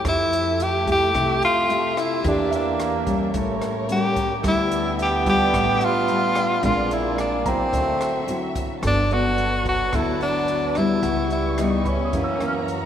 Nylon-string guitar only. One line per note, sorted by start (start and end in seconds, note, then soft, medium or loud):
0.00 0.82 A3 medium
0.00 0.82 E4 medium
0.00 0.83 G4 medium
0.05 1.12 F3 medium
0.86 1.65 A3 medium
0.86 1.65 E4 medium
0.86 1.65 G4 medium
1.14 2.21 C3 medium
1.69 2.20 A3 medium
1.69 2.20 E4 medium
1.69 2.20 G4 medium
2.25 3.06 E3 medium
2.25 2.79 A#3 medium
2.25 2.79 D4 medium
2.25 2.79 G4 medium
3.06 3.84 G3 medium
3.06 3.85 C#4 medium
3.34 4.41 A2 medium
3.89 4.24 G3 medium
3.89 4.24 A#3 medium
3.89 4.24 C#4 medium
4.43 5.51 D3 medium
4.43 4.98 G3 medium
5.26 6.04 G3 medium
5.26 6.04 F4 medium
5.54 6.61 A2 medium
6.08 6.43 G3 medium
6.08 6.44 F4 medium
6.63 7.70 A#2 medium
6.63 7.41 G#3 medium
6.63 7.41 C4 medium
6.63 7.41 D4 medium
7.46 8.24 F#3 medium
7.46 8.24 C4 medium
7.46 8.24 E4 medium
7.73 8.80 D3 medium
8.29 8.79 F#3 medium
8.29 8.79 C4 medium
8.29 8.79 E4 medium
8.84 9.00 B3 medium
8.84 9.00 F#4 medium
8.84 9.00 A4 medium
9.11 9.89 B3 medium
9.11 9.89 F#4 medium
9.11 9.90 A4 medium
9.94 11.01 D3 medium
9.94 10.49 B3 soft
9.94 10.49 F#4 soft
9.94 10.49 A4 medium
10.77 11.54 G3 medium
10.77 11.55 B3 medium
10.77 11.55 E4 medium
11.04 12.11 C#3 medium
11.59 11.96 G3 medium
11.59 11.96 B3 medium
11.59 11.96 E4 medium
12.14 12.86 F#2 medium
12.14 12.37 E3 medium
12.14 12.37 A#3 medium
12.14 12.37 C#4 medium
12.41 12.86 E3 medium
12.41 12.86 A#3 medium
12.41 12.86 C#4 medium